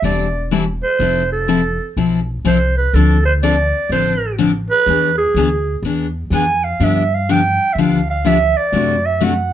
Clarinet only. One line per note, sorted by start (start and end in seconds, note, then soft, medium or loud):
0.05 0.49 D5 medium
0.83 1.28 C5 medium
1.32 1.94 A4 medium
2.47 2.75 C5 medium
2.77 2.96 B4 medium
2.94 3.25 A4 medium
3.25 3.33 C5 medium
3.43 3.88 D5 medium
3.92 4.36 C5 medium
4.70 5.15 B4 loud
5.18 5.79 G#4 medium
6.35 6.66 G#5 medium
6.64 6.85 F5 medium
6.84 7.16 E5 medium
7.14 7.33 F5 medium
7.31 7.75 G5 medium
7.73 7.82 E5 medium
7.80 8.09 F5 medium
8.10 8.28 F5 medium
8.27 8.59 E5 medium
8.57 9.08 D5 medium
9.06 9.26 E5 medium
9.24 9.53 F#5 medium